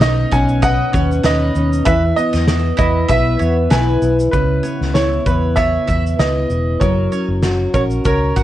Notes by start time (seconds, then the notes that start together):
Already playing: B1 B2 C#4
0.01 D#4 D#5, snare, shaker
0.31 B1 C#4 F#5 G#5, kick, shaker
0.48 shaker
0.62 B4 D#5 F#5, kick, shaker
0.93 D#2 C#4 C#5, kick, shaker
1.12 shaker
1.24 D#2 D#4 B4 D#5, snare, shaker
1.55 D#2 C#4, shaker
1.73 shaker
1.85 E2 E3 B4 E5, kick, shaker
2.16 B3 D#5, shaker
2.33 E2 D#5, snare, shaker
2.48 E4, snare, shaker
2.77 E2 B3 E4 D#5, kick, shaker
3.08 B1 B4 E5, kick, shaker
3.39 E2 B3 C#5, shaker
3.70 B1 E4 B4 G#5, snare, shaker
4.02 B1 B3, shaker
4.19 shaker
4.31 C#2 C#3 B4, kick, shaker
4.63 B3 C#5, shaker
4.81 C#2, snare
4.94 E4 C#5, snare, shaker
5.26 E2 B3 B4, kick, shaker
5.56 B4 C#5 E5, kick, shaker
5.87 E2 E4 E5, kick, shaker
6.06 shaker
6.19 C#2 B4 D#5, snare, shaker
6.50 E1 E4, shaker
6.80 F#1 F#3 A#4 C#5, kick, shaker
7.12 C#4 C#5, shaker
7.28 F#1
7.43 F#4, snare, shaker
7.73 A#1 C#4 A#4 C#5, kick, shaker
7.90 shaker
8.05 C#2 A#4 C#5, kick, shaker
8.36 G#1 F#4 F#5, kick, shaker